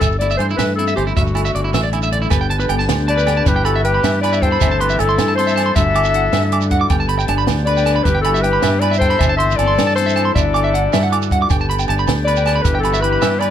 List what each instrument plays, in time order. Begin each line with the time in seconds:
Already playing: nylon-string guitar G3, clarinet A4
0.00 fingered electric bass G1, nylon-string guitar G2, clean electric guitar E5, kick, closed hi-hat, low agogo, shekere
0.12 shekere
0.19 nylon-string guitar A3, clean electric guitar E4, clarinet D5, closed hi-hat, shekere
0.31 clean electric guitar E5, shekere
0.37 fingered electric bass G2, nylon-string guitar E3, clarinet C5, clean electric guitar C5, closed hi-hat, low agogo
0.50 clean electric guitar E4, shekere
0.57 fingered electric bass G2, nylon-string guitar A3, clarinet B4, clean electric guitar E5, snare, closed hi-hat, low agogo, shekere
0.75 nylon-string guitar C4, clean electric guitar E4, clarinet A4, closed hi-hat
0.88 clean electric guitar E5, shekere
0.96 fingered electric bass G1, nylon-string guitar E3, clarinet G4, clean electric guitar C5, closed hi-hat, low agogo
1.07 clean electric guitar E4, shekere
1.16 fingered electric bass G1, nylon-string guitar G2 D3 A3, clarinet F#4, clean electric guitar E5, muted nylon-string guitar stroke, kick, closed hi-hat, shekere
1.27 shekere
1.35 nylon-string guitar A3, clean electric guitar E4, closed hi-hat, low agogo
1.45 clean electric guitar E5, shekere
1.55 fingered electric bass G1, nylon-string guitar D3, clean electric guitar D5, closed hi-hat
1.64 clean electric guitar E4
1.74 fingered electric bass A1, nylon-string guitar A3, clean electric guitar E5, snare, closed hi-hat, low agogo, shekere
1.83 clean electric guitar D5
1.93 clean electric guitar E4, nylon-string guitar E4, closed hi-hat, low agogo, shekere
2.03 clean electric guitar E5, shekere
2.12 nylon-string guitar D3, clean electric guitar D5, closed hi-hat
2.22 clean electric guitar E4, shekere
2.30 fingered electric bass G1, nylon-string guitar G2, tonewheel organ B3 G4 A4, clean electric guitar B4, kick, closed hi-hat, low agogo, shekere
2.41 clean electric guitar G5, shekere
2.50 nylon-string guitar D3, clean electric guitar A5, closed hi-hat
2.60 clean electric guitar B4, shekere
2.69 fingered electric bass G1, nylon-string guitar B3, clean electric guitar G5, closed hi-hat, low agogo
2.79 nylon-string guitar D4, clean electric guitar A5, shekere
2.89 fingered electric bass D2, nylon-string guitar D3, snare, closed hi-hat, low agogo, shekere
3.00 shekere
3.08 nylon-string guitar D4, trumpet B4, clarinet D5, clean electric guitar A5, closed hi-hat
3.17 clean electric guitar B4, shekere
3.27 nylon-string guitar A4, clean electric guitar G5, snare, closed hi-hat, low agogo
3.37 clean electric guitar A5
3.45 fingered electric bass G1, nylon-string guitar G2 E3 G3, tonewheel organ E4 G4, trumpet G4, clarinet B4, muted nylon-string guitar stroke, kick, closed hi-hat, shekere
3.56 clean electric guitar G5
3.65 nylon-string guitar E3, trumpet F#4, clarinet A4, clean electric guitar B5, closed hi-hat, low agogo, shekere
3.76 clean electric guitar E5
3.84 trumpet G4, clarinet B4, clean electric guitar G5, closed hi-hat
3.94 clean electric guitar B5
4.03 fingered electric bass G2, clean electric guitar E5, muted nylon-string guitar stroke, snare, closed hi-hat, low agogo, shekere
4.21 nylon-string guitar E4, trumpet B4, clarinet D5, clean electric guitar B5, closed hi-hat, low agogo
4.33 clean electric guitar E5, shekere
4.42 nylon-string guitar G4, trumpet A4, clarinet C5, clean electric guitar G5, kick, closed hi-hat, shekere
4.52 clean electric guitar B5
4.61 fingered electric bass G1, nylon-string guitar G2 E3 A3 C4 E4, tonewheel organ C4 A4, clean electric guitar E5, kick, closed hi-hat, low agogo, shekere
4.71 clean electric guitar A5
4.80 nylon-string guitar E3, trumpet G4, clarinet B4, clean electric guitar C6, closed hi-hat
4.90 clean electric guitar E5, shekere
4.99 fingered electric bass G1, trumpet E4, clarinet A4, closed hi-hat, low agogo
5.09 clean electric guitar C6, shekere
5.18 fingered electric bass G2, nylon-string guitar G2, snare, closed hi-hat, low agogo, shekere
5.28 clean electric guitar A5
5.35 nylon-string guitar C4, trumpet A4, clarinet C5, clean electric guitar C6, closed hi-hat
5.47 clean electric guitar E5, shekere
5.56 nylon-string guitar E4, clean electric guitar A5, snare, closed hi-hat, low agogo
5.66 clean electric guitar C6
5.74 fingered electric bass G1, nylon-string guitar G2 D3 A3 E4, tonewheel organ D4 E4 F#4, trumpet A4, clean electric guitar E5, clarinet E5, kick, closed hi-hat, shekere
5.78 nylon-string guitar F#4
5.95 nylon-string guitar D3, clean electric guitar D6, closed hi-hat, low agogo, shekere
6.04 clean electric guitar E5, shekere
6.14 nylon-string guitar E4, clean electric guitar F#5, closed hi-hat
6.32 nylon-string guitar G2, fingered electric bass G2, clean electric guitar E5, snare, closed hi-hat, low agogo, shekere
6.52 nylon-string guitar E4, clean electric guitar D6, closed hi-hat, low agogo
6.61 shekere
6.71 nylon-string guitar F#4, clean electric guitar F#5, kick, closed hi-hat, shekere
6.81 clean electric guitar D6
6.90 fingered electric bass G1, nylon-string guitar G2, tonewheel organ B3 G4 A4, clean electric guitar G5, kick, closed hi-hat, low agogo, shekere
7.00 clean electric guitar A5, shekere
7.08 nylon-string guitar D3, clean electric guitar B5, closed hi-hat
7.19 clean electric guitar G5, shekere
7.28 fingered electric bass G1, nylon-string guitar D4, clean electric guitar A5, closed hi-hat, low agogo
7.38 clean electric guitar B5, shekere
7.47 fingered electric bass D2, nylon-string guitar D3, snare, closed hi-hat, low agogo, shekere
7.58 shekere
7.65 nylon-string guitar D4, trumpet B4, clarinet D5, clean electric guitar B5, closed hi-hat
7.77 clean electric guitar G5, shekere
7.86 nylon-string guitar A4, clean electric guitar A5, snare, closed hi-hat, low agogo
7.96 clean electric guitar B5
8.04 fingered electric bass G1, nylon-string guitar G2 E3 G3, tonewheel organ E4, trumpet G4, clarinet B4, kick, closed hi-hat, shekere
8.08 nylon-string guitar E4 G4
8.15 clean electric guitar G5
8.21 trumpet F#4, clarinet A4, clean electric guitar B5, closed hi-hat
8.26 low agogo, shekere
8.34 clean electric guitar E5, shekere
8.41 nylon-string guitar E4, trumpet G4, clarinet B4, clean electric guitar G5, closed hi-hat
8.53 clean electric guitar B5
8.62 nylon-string guitar G2, fingered electric bass G2, clean electric guitar E5, snare, closed hi-hat, low agogo, shekere
8.80 nylon-string guitar E4, trumpet B4, clarinet D5, clean electric guitar B5, closed hi-hat, low agogo
8.91 clean electric guitar E5, shekere
8.98 nylon-string guitar E4, trumpet A4, clarinet C5, clean electric guitar G5, kick, closed hi-hat
9.04 shekere
9.10 nylon-string guitar G4, clean electric guitar B5
9.19 fingered electric bass G1, nylon-string guitar G2, tonewheel organ C4 A4, clean electric guitar E5, kick, closed hi-hat, low agogo, shekere
9.29 clean electric guitar A5
9.37 trumpet C5, clarinet E5, clean electric guitar C6, closed hi-hat
9.41 nylon-string guitar E3
9.51 shekere
9.56 fingered electric bass G1, trumpet A4, clarinet D5, closed hi-hat, low agogo
9.60 nylon-string guitar C4, shekere
9.68 clean electric guitar C6
9.78 fingered electric bass G2, muted nylon-string guitar stroke, snare, closed hi-hat, low agogo, shekere
9.87 clean electric guitar A5, shekere
9.95 nylon-string guitar C4, trumpet A4, clarinet C5, muted clean electric guitar stroke, closed hi-hat
9.99 shekere
10.06 clean electric guitar E5, shekere
10.16 nylon-string guitar E4, clean electric guitar A5, closed hi-hat, low agogo
10.25 clean electric guitar C6
10.35 fingered electric bass G1, nylon-string guitar G2, tonewheel organ D4 F#4, trumpet A4, clarinet D5, clean electric guitar E5, kick, closed hi-hat, shekere
10.54 nylon-string guitar D3, clean electric guitar D6, closed hi-hat, low agogo, shekere
10.64 clean electric guitar E5
10.74 nylon-string guitar E4, clean electric guitar F#5, closed hi-hat
10.93 nylon-string guitar G2, fingered electric bass G2, clean electric guitar E5, snare, closed hi-hat, low agogo, shekere
11.03 clean electric guitar F#5
11.12 nylon-string guitar E4, clean electric guitar D6, closed hi-hat, low agogo, shekere
11.22 shekere
11.31 nylon-string guitar F#4, clean electric guitar F#5, kick, closed hi-hat, shekere
11.42 clean electric guitar D6
11.49 fingered electric bass G1, tonewheel organ B3 G4 A4, clean electric guitar G5, muted nylon-string guitar stroke, kick, closed hi-hat, low agogo, shekere
11.60 clean electric guitar A5, shekere
11.70 nylon-string guitar D3, clean electric guitar B5, closed hi-hat
11.79 clean electric guitar G5, shekere
11.88 fingered electric bass G1, nylon-string guitar D4, clean electric guitar A5, closed hi-hat, low agogo
11.99 clean electric guitar B5, shekere
12.08 fingered electric bass D2, snare, closed hi-hat, low agogo, shekere
12.17 shekere
12.24 trumpet B4, clarinet D5, clean electric guitar B5, closed hi-hat
12.37 clean electric guitar G5, shekere
12.46 nylon-string guitar A4, clean electric guitar A5, snare, closed hi-hat, low agogo
12.56 clean electric guitar B5
12.62 fingered electric bass G1, nylon-string guitar G2, tonewheel organ G4, trumpet G4, clarinet B4, kick, closed hi-hat, shekere
12.67 tonewheel organ E4
12.75 clean electric guitar G5
12.80 clarinet A4, low agogo
12.84 nylon-string guitar E3, trumpet F#4, clean electric guitar B5, closed hi-hat, shekere
12.94 clean electric guitar E5, shekere
13.01 nylon-string guitar E4, trumpet G4, clarinet B4, clean electric guitar B5, closed hi-hat
13.13 clean electric guitar B5
13.22 nylon-string guitar G2, fingered electric bass G2, clean electric guitar E5, snare, closed hi-hat, low agogo, shekere
13.39 nylon-string guitar E4, trumpet B4, clarinet D5, clean electric guitar B5, closed hi-hat, low agogo